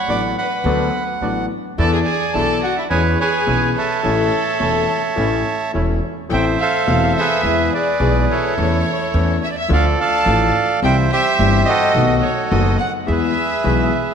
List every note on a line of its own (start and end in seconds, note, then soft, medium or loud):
0.00 0.36 F#5 medium
0.00 0.37 B5 medium
0.00 0.10 C#6 medium
0.08 0.32 A1 medium
0.08 0.32 A1 soft
0.08 0.32 A2 soft
0.08 0.32 F#3 soft
0.08 0.32 B3 soft
0.08 0.32 D4 soft
0.08 0.32 F#4 medium
0.08 0.32 A4 soft
0.08 0.22 D5 medium
0.08 0.22 D6 medium
0.37 1.04 B4 medium
0.37 1.46 F#5 medium
0.37 1.04 B5 medium
0.64 0.88 D2 medium
0.64 0.89 D2 medium
0.64 0.89 D3 medium
0.64 0.89 F#3 medium
0.64 0.88 B3 medium
0.64 0.89 B3 medium
0.64 0.88 D4 medium
0.64 0.89 D4 medium
0.64 0.88 F#4 medium
0.64 0.89 A4 medium
1.21 1.45 A1 medium
1.21 1.45 A1 soft
1.21 1.45 A2 soft
1.21 1.45 F#3 soft
1.21 1.45 B3 soft
1.21 1.45 D4 soft
1.21 1.45 F#4 medium
1.21 1.45 A4 soft
1.78 2.02 E2 medium
1.78 2.02 E3 medium
1.78 2.02 A3 medium
1.78 2.02 B3 medium
1.78 2.02 D4 medium
1.78 2.02 E4 medium
1.78 1.91 A4 medium
1.78 2.02 A4 medium
1.78 2.87 D5 medium
1.78 1.91 A5 medium
1.93 1.99 G#4 medium
1.93 2.00 G#5 medium
2.05 2.33 G#4 medium
2.05 2.34 G#5 medium
2.34 2.58 B1 medium
2.34 2.58 B1 soft
2.34 2.58 B2 soft
2.34 2.58 E3 soft
2.34 2.58 A3 soft
2.34 2.58 B3 soft
2.34 2.58 D4 soft
2.34 2.58 E4 medium
2.34 2.58 A4 soft
2.34 2.61 A4 medium
2.34 2.60 A5 medium
2.63 2.76 F#4 medium
2.63 2.78 F#5 medium
2.77 2.84 E4 medium
2.77 2.83 E5 medium
2.90 3.14 E2 medium
2.90 3.15 E2 medium
2.90 3.15 E3 medium
2.90 3.14 G#3 medium
2.90 3.15 B3 medium
2.90 3.14 C#4 medium
2.90 3.15 C#4 medium
2.90 3.14 E4 medium
2.90 3.03 G#4 medium
2.90 3.15 G#4 medium
2.90 3.19 B4 medium
2.90 3.19 C#5 medium
2.90 3.03 G#5 medium
3.20 3.72 G#4 medium
3.20 4.01 B4 medium
3.20 3.76 C#5 medium
3.20 3.73 G#5 medium
3.46 3.71 B1 medium
3.46 3.71 B2 medium
3.46 3.71 E3 soft
3.46 3.71 G#3 soft
3.46 3.71 B3 soft
3.46 3.71 C#4 soft
3.46 3.71 E4 soft
3.46 3.71 G#4 soft
3.76 5.71 A4 medium
3.76 5.71 C#5 medium
3.76 5.72 E5 medium
3.76 5.72 A5 medium
4.03 4.27 A1 medium
4.03 4.28 A1 medium
4.03 4.28 A2 medium
4.03 4.27 E3 medium
4.03 4.27 A3 medium
4.03 4.27 C#4 medium
4.03 4.28 C#4 medium
4.03 4.28 E4 medium
4.03 4.28 A4 medium
4.59 4.84 E1 soft
4.59 4.84 E1 medium
4.59 4.84 E2 soft
4.59 4.84 E3 soft
4.59 4.84 A3 soft
4.59 4.84 C#4 soft
4.59 4.84 E4 medium
4.59 4.84 A4 soft
5.16 5.40 A1 medium
5.16 5.41 A1 medium
5.16 5.40 A2 medium
5.16 5.41 E3 medium
5.16 5.40 A3 medium
5.16 5.41 A3 medium
5.16 5.41 C#4 medium
5.16 5.41 E4 medium
5.16 5.40 A4 medium
5.73 5.98 E1 soft
5.73 5.98 E1 medium
5.73 5.98 E2 soft
5.73 5.98 E3 soft
5.73 5.98 A3 soft
5.73 5.98 C#4 soft
5.73 5.98 E4 soft
5.73 5.98 A4 soft
6.29 6.54 A1 medium
6.29 6.55 A1 medium
6.29 6.54 A2 medium
6.29 6.54 E3 medium
6.29 6.54 A3 medium
6.29 6.54 C4 medium
6.29 6.54 A4 medium
6.29 6.61 C5 medium
6.29 6.44 G5 medium
6.29 6.45 G5 medium
6.33 7.17 E5 medium
6.59 7.42 A4 medium
6.59 7.42 C5 medium
6.59 7.12 F5 medium
6.59 7.13 F5 medium
6.87 7.11 E1 medium
6.87 7.11 E2 medium
6.87 7.11 E3 medium
6.87 7.11 A3 medium
6.87 7.11 C4 medium
6.87 7.11 A4 medium
7.15 7.73 G#4 medium
7.15 7.68 E5 medium
7.15 7.70 E5 medium
7.20 7.73 B4 medium
7.43 7.67 E2 medium
7.43 7.68 E2 medium
7.43 7.68 E3 medium
7.43 7.68 G#3 medium
7.43 7.68 B3 medium
7.43 7.68 G#4 medium
7.72 8.54 G#4 medium
7.72 8.54 B4 medium
7.72 8.25 D5 medium
7.72 8.26 D5 medium
8.00 8.24 B1 medium
8.00 8.24 B2 medium
8.00 8.24 E3 medium
8.00 8.24 G#3 medium
8.00 8.24 B3 medium
8.00 8.24 G#4 medium
8.31 9.39 E4 medium
8.31 9.39 A4 medium
8.31 9.46 C#5 medium
8.31 9.39 C#5 medium
8.58 8.81 E2 medium
8.58 8.81 E3 medium
8.58 8.81 A3 medium
8.58 8.81 C#4 medium
8.58 8.81 A4 medium
9.14 9.37 E2 medium
9.14 9.38 E2 medium
9.14 9.38 E3 medium
9.14 9.37 A3 medium
9.14 9.38 C#4 medium
9.14 9.38 A4 medium
9.43 9.49 E5 medium
9.50 9.56 D5 medium
9.50 9.57 D5 medium
9.57 9.70 E5 medium
9.68 9.93 D2 medium
9.68 9.94 D2 medium
9.68 9.93 D3 medium
9.68 9.93 F3 medium
9.68 9.93 A3 medium
9.68 9.93 D4 medium
9.68 9.93 A4 medium
9.73 10.80 A4 medium
9.73 9.99 D5 medium
9.73 9.85 F5 medium
10.01 10.80 D5 medium
10.01 10.80 F5 medium
10.01 10.52 A5 medium
10.26 10.50 A1 loud
10.26 10.50 A1 medium
10.26 10.50 A2 medium
10.26 10.50 F3 medium
10.26 10.50 A3 medium
10.26 10.50 D4 medium
10.26 10.50 A4 medium
10.82 11.06 C2 medium
10.82 11.06 C3 medium
10.82 11.06 E3 medium
10.82 11.06 G3 medium
10.82 11.07 C4 medium
10.82 11.07 G4 medium
10.82 11.11 C5 medium
10.82 11.11 E5 medium
10.82 10.96 G5 medium
10.82 10.96 G5 loud
11.11 11.92 G4 medium
11.11 11.92 C5 medium
11.11 11.63 E5 medium
11.11 11.70 E5 loud
11.39 11.63 G1 medium
11.39 11.63 G2 medium
11.39 11.63 E3 medium
11.39 11.63 G3 medium
11.39 11.63 C4 medium
11.39 11.63 G4 medium
11.65 12.76 F#4 medium
11.65 12.77 A4 medium
11.65 12.24 D#5 medium
11.65 12.19 D#5 medium
11.95 12.19 B1 medium
11.95 12.19 B2 medium
11.95 12.19 D#3 medium
11.95 12.19 A3 medium
11.95 12.19 B3 medium
11.95 12.19 F#4 medium
12.21 12.48 C#5 medium
12.21 12.52 C#5 medium
12.48 12.75 F#1 medium
12.48 12.75 F#2 medium
12.48 12.75 D#3 medium
12.48 12.75 A3 medium
12.48 12.75 B3 medium
12.48 12.75 F#4 medium
12.48 12.76 D#5 medium
12.48 12.78 D#5 medium
12.77 12.91 F#5 medium
12.77 12.92 F#5 medium
13.06 13.31 E2 medium
13.06 13.32 E2 medium
13.06 13.31 E3 medium
13.06 13.31 G#3 medium
13.06 13.31 B3 medium
13.06 13.31 G#4 medium
13.06 14.14 E5 medium
13.12 14.14 G#4 medium
13.12 14.14 B4 medium
13.64 13.88 B1 medium
13.64 13.88 B2 medium
13.64 13.88 E3 medium
13.64 13.88 G#3 medium
13.64 13.88 B3 medium
13.64 13.88 G#4 medium